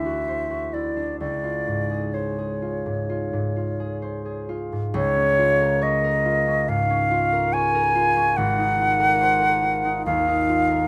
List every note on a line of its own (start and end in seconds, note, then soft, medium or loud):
0.00 1.24 D2 soft
0.00 0.95 D4 soft
0.00 0.72 E4 soft
0.00 0.75 E5 medium
0.05 0.49 F#4 soft
0.28 2.13 C5 soft
0.50 1.24 F#4 soft
0.74 1.24 E4 soft
0.74 1.20 D5 medium
0.96 1.24 D4 soft
1.20 4.93 C#2 soft
1.20 2.15 D5 medium
1.44 2.61 F4 soft
1.67 2.85 G#2 soft
1.91 2.37 G#4 soft
2.14 4.01 C5 soft
2.14 4.49 C#5 soft
2.38 3.79 G#4 soft
2.62 3.08 F4 soft
2.86 3.32 G#2 soft
3.09 3.55 F4 soft
3.33 4.71 G#2 soft
3.56 4.48 F4 soft
3.80 4.24 G#4 soft
4.02 4.99 C5 soft
4.25 8.15 G#4 soft
4.49 5.37 F4 soft
4.72 4.99 G#2 soft
4.94 8.39 C#2 medium
4.94 5.84 C#5 loud
5.16 6.46 C#4 medium
5.39 6.24 F4 medium
5.60 6.03 A#4 medium
5.81 7.52 C#5 medium
5.81 6.70 D#5 medium
6.04 7.31 A#4 medium
6.25 7.10 F4 medium
6.47 6.88 C#4 medium
6.68 8.39 G#2 medium
6.68 7.55 F5 loud
6.90 8.15 C#4 medium
7.11 7.94 F4 medium
7.32 7.74 A#4 medium
7.53 8.40 C#5 medium
7.53 8.38 G#5 loud
7.75 8.99 A#4 medium
7.95 8.78 F4 medium
8.16 8.40 C#4 soft
8.37 10.88 G#1 medium
8.37 10.05 F#5 loud
8.58 9.84 D#4 soft
8.79 9.62 F4 medium
9.00 9.40 A#4 medium
9.21 10.87 C5 medium
9.42 10.68 A#4 medium
9.63 10.48 F4 medium
9.85 10.27 D#4 soft
10.06 10.88 D#2 medium
10.06 10.88 F5 loud
10.28 10.88 D#4 medium
10.49 10.88 F4 medium
10.69 10.88 A#4 medium